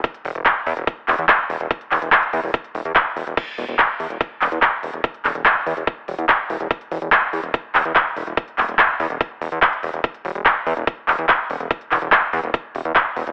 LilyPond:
<<
  \new Staff \with { instrumentName = "Analog synth bass" } { \clef bass \time 4/4 \tempo 4 = 144 r8 e,,16 e,,16 r8 e,16 e,,16 r8 e,,16 e,16 r8 e,,16 e,,16 | r8 e,,16 e,,16 r8 e,16 e,,16 r8 e,,16 e,16 r8 e,,16 e,,16 | r8 e,,16 e,,16 r8 e,16 e,,16 r8 e,,16 e,16 r8 e,,16 e,,16 | r8 e,,16 e,,16 r8 e,16 e,,16 r8 e,,16 e,16 r8 e,,16 e,,16 |
r8 e,,16 e,,16 r8 e,16 e,,16 r8 e,,16 e,16 r8 e,,16 e,,16 | r8 e,,16 e,,16 r8 e,16 e,,16 r8 e,,16 e,16 r8 e,,16 e,,16 | r8 e,,16 e,,16 r8 e,16 e,,16 r8 e,,16 e,16 r8 e,,16 e,,16 | r8 e,,16 e,,16 r8 e,16 e,,16 r8 e,,16 e,16 r8 e,,16 e,,16 | }
  \new DrumStaff \with { instrumentName = "Drums" } \drummode { \time 4/4 <hh bd>16 hh16 hho16 hh16 <hc hh bd>8 hho16 hh16 <hh bd>8 <hc hho>16 hh16 <hc hh bd>8 hho16 hh16 | <hh bd>16 hh16 <hc hho>16 hh16 <hc hh bd>16 hh16 hho16 hho16 <hh bd>16 hh16 hho16 hh16 <hc hh bd>8 hho16 hh16 | <cymc hh bd>16 hh16 hho16 hh16 <hc hh bd>8 hho16 hh16 <hh bd>8 <hc hho>16 hh16 <hc hh bd>8 hho16 hh16 | <hh bd>16 hh16 <hc hho>16 hh16 <hc hh bd>8 hho16 hh16 <hh bd>8 hho16 hh16 <hc hh bd>8 hho16 hh16 |
<hh bd>16 hh16 hho16 hh16 <hc hh bd>8 hho16 hh16 <hh bd>8 <hc hho>16 hh16 <hc hh bd>8 hho16 hh16 | <hh bd>16 hh16 <hc hho>16 hh16 <hc hh bd>8 hho16 hh16 <hh bd>8 hho16 hh16 <hc hh bd>16 hh16 hho16 hh16 | <hh bd>16 hh16 hho16 hh16 <hc hh bd>8 hho16 hh16 <hh bd>8 <hc hho>16 hh16 <hc hh bd>8 hho16 hh16 | <hh bd>16 hh16 <hc hho>16 hh16 <hc hh bd>8 hho16 hh16 <hh bd>8 hho16 hh16 <hc hh bd>8 hho16 hh16 | }
>>